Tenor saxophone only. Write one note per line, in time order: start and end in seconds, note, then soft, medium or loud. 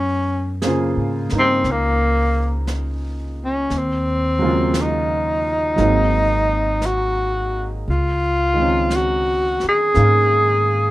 0.00 0.64 C#4 medium
1.38 1.73 C4 medium
1.71 2.71 A#3 medium
3.44 3.79 C#4 medium
3.77 4.83 C4 medium
4.81 6.88 D#4 medium
6.86 7.72 F#4 medium
7.90 8.97 F4 medium
8.96 9.65 F#4 medium
9.69 10.91 G#4 loud